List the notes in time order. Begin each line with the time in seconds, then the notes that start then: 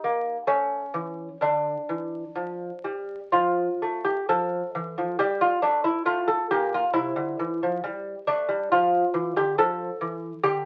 Already playing: D#4
0.04 A#3
0.47 A3 C#4
0.94 E3
1.41 D3 D4
1.89 E3
2.36 F3
2.84 G3
3.32 F3 F4
3.82 A3
4.05 G4
4.29 F3 A4
4.75 E3
4.98 F3
5.19 G3 G4
5.41 F4
5.62 A3 D4
5.84 E4
6.05 A2 F4
6.28 A4
6.51 A#2 G4
6.74 F4
6.94 C3 E4
7.16 D3
7.39 E3
7.63 F3
7.84 G3
8.27 A3 D4
8.49 G3
8.72 F3 F4
9.14 E3
9.36 D3 G4
9.58 F3 A4
10.01 E3
10.43 D3 G4